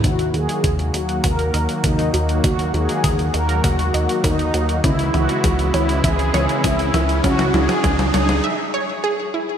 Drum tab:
HH |xxxxxxxxxxxxxxxx|xxxxxxxxxxxxxxxx|xxxxxxxxxxxxxxxx|xxxxxxxx--------|
T2 |o---o---o---o---|o---o---o---o---|o-o-o-o-o-o-o-o-|oooooooo--------|
BD |o---o---o---o---|o---o---o---o---|o---o---o---o---|o---o-----------|